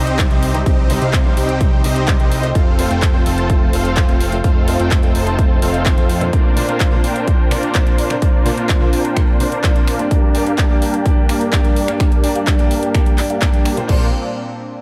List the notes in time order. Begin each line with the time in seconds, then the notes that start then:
Already playing: C2 C3 G3 C4 D#4 G4 C5 D#5
0.07 closed hi-hat
0.18 C3 G3 C4 D#4 C5, kick, clap, closed hi-hat
0.31 C2 C4 D#4 G4 C5 D#5, closed hi-hat
0.43 open hi-hat
0.54 C3 G3 C4 D#4 C5, closed hi-hat
0.66 C2 C4 D#4 G4 C5 D#5, kick, closed hi-hat
0.89 C3 G3 C4 D#4 C5, open hi-hat
1.02 C2 C4 D#4 G4 C5 F5, closed hi-hat
1.13 kick, clap, closed hi-hat
1.25 C3 G3 C4 D#4 C5
1.37 C2 C4 D#4 G4 C5 G5, open hi-hat
1.49 closed hi-hat
1.60 C3 G3 C4 D#4 C5, kick, closed hi-hat
1.84 C2 C3 G3 C4 D#4 G4 C5 D#5, open hi-hat
1.96 closed hi-hat
2.07 C3 G3 C4 D#4 C5, kick, clap, closed hi-hat
2.20 C2 C4 D#4 G4 C5 D#5, closed hi-hat
2.32 open hi-hat
2.43 A3 C4 F4 C5, closed hi-hat
2.55 F1 A3 C4 F4 A4 C5 F5, kick, closed hi-hat
2.78 A3 C4 F4 C5, open hi-hat
2.91 F1 C4 F4 A4 C5 G5, closed hi-hat
3.02 kick, clap, closed hi-hat
3.14 A3 C4 F4 C5
3.26 F1 C4 F4 A4 C5 A5, open hi-hat
3.38 closed hi-hat
3.49 A3 C4 F4 C5, kick, closed hi-hat
3.73 F1 A3 C4 F4 A4 C5 F5, open hi-hat
3.85 closed hi-hat
3.96 A3 C4 F4 C5, kick, clap, closed hi-hat
4.09 F1 C4 F4 A4 C5 F5, closed hi-hat
4.21 open hi-hat
4.32 A3 C4 F4 C5, closed hi-hat
4.44 F1 C4 D#4 F4 A4 C5 F5, kick, closed hi-hat
4.67 A3 C4 F4 C5, open hi-hat
4.80 F1 C4 F4 A4 C5 G5, closed hi-hat
4.91 kick, clap, closed hi-hat
5.03 A3 C4 F4 C5, closed hi-hat
5.15 F1 C4 F4 A4 C5 A5, open hi-hat
5.27 closed hi-hat
5.38 A3 C4 F4 C5, kick, closed hi-hat
5.62 F1 A3 C4 F4 A4 C5 F5, open hi-hat
5.74 closed hi-hat
5.85 A3 C4 F4 C5, kick, clap, closed hi-hat
5.98 F2 C4 F4 A4 C5 F5, closed hi-hat
6.09 open hi-hat
6.21 A#2 A#3 D4 F4 C5, closed hi-hat
6.33 A#3 D4 F4 A#4 C5 D5, kick, closed hi-hat
6.56 A#2 A#3 D4 F4 C5, open hi-hat
6.69 D4 F4 A#4 C5 F5, closed hi-hat
6.80 kick, clap, closed hi-hat
6.92 A#2 A#3 D4 F4 C5
7.04 D4 F4 A#4 C5 G5, open hi-hat
7.16 closed hi-hat
7.27 A#2 A#3 D4 F4 C5, kick, closed hi-hat
7.51 A#2 A#3 D4 F4 A#4 C5 D5, finger snap, open hi-hat
7.63 closed hi-hat
7.74 A#2 A#3 D4 F4 C5, kick, clap, closed hi-hat
7.87 D4 F4 A#4 C5 D5, closed hi-hat
7.98 open hi-hat
8.10 A#2 A#3 D4 F4 C5, finger snap, closed hi-hat
8.22 D4 F4 A#4 C5 D5, kick, closed hi-hat
8.45 A#2 A#3 D4 F4 C5, open hi-hat
8.57 D4 F4 A#4 C5 F5, closed hi-hat
8.69 kick, clap, closed hi-hat
8.81 A#2 A#3 D4 F4 C5
8.93 D4 F4 A#4 C5 G5, open hi-hat
9.05 closed hi-hat
9.16 A#2 A#3 D4 F4 C5, finger snap, kick, closed hi-hat
9.40 A#2 A#3 D4 F4 A#4 C5 D5, open hi-hat
9.52 closed hi-hat
9.63 A#2 A#3 D4 F4 C5, kick, clap, closed hi-hat
9.76 D4 F4 A#4 C5 D5, closed hi-hat
9.87 finger snap, open hi-hat
9.99 G2 A#3 D4 G4 D5, closed hi-hat
10.11 G3 A#3 D4 G4 A#4 D5, kick, closed hi-hat
10.34 G2 A#3 D4 G4 D5, open hi-hat
10.46 A#3 D4 G4 A#4 F5, closed hi-hat
10.58 kick, clap, closed hi-hat
10.70 G2 A#3 D4 G4 D5
10.82 A#3 D4 G4 A#4 G5, open hi-hat
10.94 closed hi-hat
11.05 G2 A#3 D4 G4 D5, kick, closed hi-hat
11.29 G2 A#3 D4 G4 A#4 D5, finger snap, open hi-hat
11.41 closed hi-hat
11.52 G2 A#3 D4 G4 D5, kick, clap, closed hi-hat
11.65 A#3 D4 G4 A#4 D5, closed hi-hat
11.76 open hi-hat
11.88 G2 A#3 D4 G4 D5, finger snap, closed hi-hat
12.00 A#3 D4 G4 A#4 D5, finger snap, kick, closed hi-hat
12.12 closed hi-hat
12.23 G2 A#3 D4 G4 D5, open hi-hat
12.35 A#3 D4 G4 A#4 F5, closed hi-hat
12.47 kick, clap, closed hi-hat
12.59 G2 A#3 D4 G4 D5, closed hi-hat
12.71 A#3 D4 G4 A#4 G5, open hi-hat
12.83 closed hi-hat
12.94 G2 A#3 D4 G4 D5, finger snap, kick, closed hi-hat
13.06 closed hi-hat
13.18 G2 A#3 D4 G4 D5, clap, open hi-hat
13.30 A#3 D4 G4 A#4 F5, closed hi-hat
13.41 G2 A#3 D4 G4 D5, kick, clap, closed hi-hat
13.54 A#3 D4 G4 A#4 G5, closed hi-hat
13.65 A#3 D4 G4 A#4 G5, finger snap, open hi-hat
13.77 A#2 A#3 D4 F4 C5, closed hi-hat
13.87 A#1 A#2 A#3 C4 D4 F4 A#4 C5 D5, kick, crash